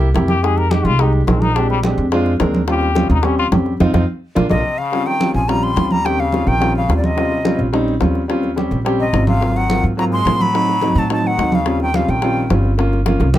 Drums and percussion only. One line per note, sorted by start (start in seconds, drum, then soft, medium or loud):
0.01 high bongo soft
0.01 high conga soft
0.14 high bongo medium
0.14 low bongo medium
0.14 high conga medium
0.28 high bongo soft
0.28 high conga medium
0.43 high bongo medium
0.43 high conga soft
0.57 high bongo soft
0.57 high conga soft
0.71 high bongo medium
0.71 high conga loud
0.85 high bongo soft
0.85 high conga soft
0.85 low conga medium
0.99 high bongo medium
0.99 high conga soft
1.13 high conga soft
1.27 high bongo medium
1.27 low bongo medium
1.27 high conga medium
1.42 high bongo soft
1.42 high conga medium
1.56 high bongo medium
1.56 high conga soft
1.70 high bongo soft
1.70 high conga soft
1.83 high bongo medium
1.83 high conga loud
1.98 high conga soft
2.12 high bongo medium
2.12 high conga soft
2.26 high bongo soft
2.26 high conga soft
2.40 high bongo medium
2.40 low bongo loud
2.40 high conga medium
2.54 high bongo soft
2.54 high conga medium
2.68 high bongo medium
2.68 high conga soft
2.81 high bongo soft
2.81 high conga soft
2.95 high bongo medium
2.95 high conga loud
3.10 high bongo soft
3.10 high conga soft
3.10 low conga medium
3.23 high bongo medium
3.23 high conga soft
3.39 high conga soft
3.52 high bongo medium
3.52 low bongo medium
3.52 high conga medium
3.66 high bongo soft
3.80 high bongo loud
3.80 high conga loud
3.94 high bongo loud
3.94 high conga loud
4.36 high bongo loud
4.36 high conga loud
4.50 high bongo loud
4.50 high conga loud
4.93 high bongo medium
4.93 high conga soft
5.07 high bongo soft
5.07 high conga soft
5.20 high bongo medium
5.20 high conga medium
5.34 high bongo soft
5.49 high bongo medium
5.49 high conga soft
5.63 high conga soft
5.76 high bongo medium
5.76 low bongo medium
5.76 high conga medium
5.91 high bongo soft
5.91 high conga medium
6.05 high bongo medium
6.05 high conga soft
6.18 high bongo soft
6.18 high conga soft
6.32 high bongo medium
6.32 high conga medium
6.47 high bongo soft
6.47 high conga soft
6.60 high bongo medium
6.60 high conga soft
6.75 high conga soft
6.89 high bongo medium
6.89 low bongo medium
6.89 high conga soft
7.04 high bongo soft
7.04 high conga medium
7.18 high bongo medium
7.18 high conga soft
7.31 high bongo soft
7.31 high conga soft
7.45 high bongo medium
7.45 high conga loud
7.59 high bongo soft
7.74 high bongo medium
7.74 high conga soft
7.88 high conga soft
8.01 high bongo medium
8.01 low bongo medium
8.01 high conga medium
8.15 high bongo soft
8.30 high bongo medium
8.30 high conga soft
8.43 high bongo soft
8.43 high conga soft
8.57 high bongo medium
8.57 high conga medium
8.72 high bongo soft
8.72 high conga soft
8.86 high bongo medium
8.86 high conga soft
9.00 high conga soft
9.14 high bongo medium
9.14 low bongo medium
9.14 high conga soft
9.27 high bongo soft
9.27 high conga medium
9.41 high bongo medium
9.41 high conga soft
9.56 high bongo soft
9.56 high conga soft
9.70 high bongo medium
9.70 high conga medium
9.85 high bongo soft
9.98 high bongo medium
9.98 high conga soft
10.12 high conga soft
10.25 high bongo medium
10.25 low bongo medium
10.25 high conga medium
10.41 high bongo soft
10.41 high conga medium
10.55 high bongo medium
10.55 high conga soft
10.68 high bongo soft
10.68 high conga soft
10.82 high bongo medium
10.82 high conga medium
10.96 high bongo soft
10.96 high conga soft
11.10 high bongo medium
11.10 high conga soft
11.24 high conga soft
11.38 high bongo medium
11.38 low bongo medium
11.38 high conga soft
11.52 high bongo soft
11.52 high conga medium
11.66 high bongo medium
11.66 high conga soft
11.80 high bongo soft
11.80 high conga soft
11.94 high bongo medium
11.94 high conga loud
12.09 high bongo soft
12.22 high bongo medium
12.22 high conga soft
12.37 high conga soft
12.50 high bongo medium
12.50 low bongo medium
12.50 high conga medium
12.65 high bongo soft
12.79 high bongo medium
12.79 high conga soft
12.93 high bongo soft
12.93 high conga soft
13.06 high bongo loud
13.06 high conga medium
13.21 high bongo medium
13.34 low bongo medium
13.34 high conga loud